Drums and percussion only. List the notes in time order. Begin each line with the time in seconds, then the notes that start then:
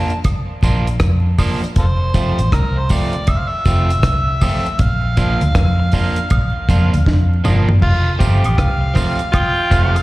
0.10 closed hi-hat
0.24 kick, closed hi-hat, high woodblock
0.63 kick, closed hi-hat, tambourine
0.87 closed hi-hat
1.00 kick, cross-stick, closed hi-hat
1.38 kick, open hi-hat, tambourine, high woodblock
1.64 closed hi-hat
1.76 kick, closed hi-hat
2.14 kick, closed hi-hat, tambourine
2.39 closed hi-hat
2.52 kick, cross-stick, closed hi-hat
2.89 kick, open hi-hat, tambourine
3.13 closed hi-hat
3.27 kick, closed hi-hat, high woodblock
3.65 kick, closed hi-hat, tambourine
3.90 closed hi-hat
4.03 kick, cross-stick, closed hi-hat
4.41 kick, open hi-hat, tambourine, high woodblock
4.66 closed hi-hat
4.79 kick, closed hi-hat
5.17 kick, closed hi-hat, tambourine
5.41 closed hi-hat
5.55 kick, cross-stick, closed hi-hat
5.92 kick, open hi-hat, tambourine
6.16 closed hi-hat
6.30 kick, closed hi-hat, high woodblock
6.69 kick, closed hi-hat, tambourine
6.94 closed hi-hat
7.06 kick, snare
7.45 mid tom, tambourine, high woodblock
7.69 floor tom
7.82 kick, crash
8.20 kick, closed hi-hat, tambourine
8.44 closed hi-hat, high woodblock
8.58 kick, cross-stick, closed hi-hat
8.95 kick, cross-stick, open hi-hat, tambourine
9.19 closed hi-hat
9.33 kick, closed hi-hat, high woodblock
9.71 kick, closed hi-hat, tambourine
9.96 closed hi-hat